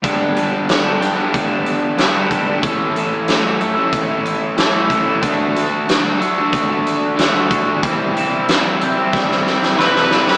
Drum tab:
HH |x-x-x-x-x-x-x-x-|x-x-x-x-x-x-x-x-|x-x-x-x-x-x-x-x-|x-x-x-x---------|
SD |----o-o-----o---|----o-------o---|----o-------o---|----o---oooooooo|
BD |o-------o-----o-|o-------o-----o-|o-------o-----o-|o-------o-------|